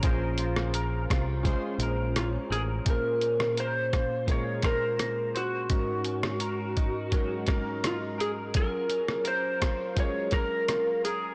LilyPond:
<<
  \new Staff \with { instrumentName = "Electric slide guitar" } { \time 4/4 \key bes \minor \tempo 4 = 84 r2. f'8 aes'8 | bes'4 c''4 des''8 bes'4 ges'8~ | ges'2~ ges'8 r8 f'8 aes'8 | bes'4 c''4 des''8 bes'4 aes'8 | }
  \new Staff \with { instrumentName = "Clean electric guitar" } { \time 4/4 \key bes \minor bes'8 f'8 bes'8 f'8 aes8 bes'8 des'8 bes'8 | bes,8 des'8 bes'16 r16 f'8 aes8 c''4 c''8 | aes,8 des'8 bes'8 ees'8 ges8 bes'8 ees'8 bes'8 | ges8 des'8 bes'8 f'8 aes8 bes'8 f'8 bes'8 | }
  \new Staff \with { instrumentName = "Synth keys" } { \time 4/4 \key bes \minor <des' f' aes' c''>4 r4 <des' f' aes' c''>4 r4 | <bes, des' f' aes' c''>4 r4 <bes, des' f' aes' bes'>4 r4 | <aes des' ees' ges' bes'>4 r4 <aes des' ees' ges' bes'>4 r4 | <ges des' f' aes' bes'>4 r4 <ges des' f' aes' bes'>4 r4 | }
  \new Staff \with { instrumentName = "Picked electric bass" } { \clef bass \time 4/4 \key bes \minor bes,,4. c,8. r16 bes,,4 a,,8 | r1 | r1 | r1 | }
  \new DrumStaff \with { instrumentName = "Drums" } \drummode { \time 4/4 <hh bd>8 hh16 ss16 hh8 <hh bd ss>8 <hh bd>8 hh8 <hh ss>8 hh8 | <hh bd>8 hh16 ss16 hh8 <hh bd ss>8 <hh bd>8 <hh bd ss>8 <hh ss>8 hh8 | <hh bd>8 hh16 ss16 hh8 <hh bd>8 <hh bd>8 <hh bd ss>8 <hh ss>8 hh8 | <hh bd>8 hh16 ss16 hh8 <hh bd ss>8 <hh bd>8 <hh bd ss>8 <hh ss>8 hh8 | }
>>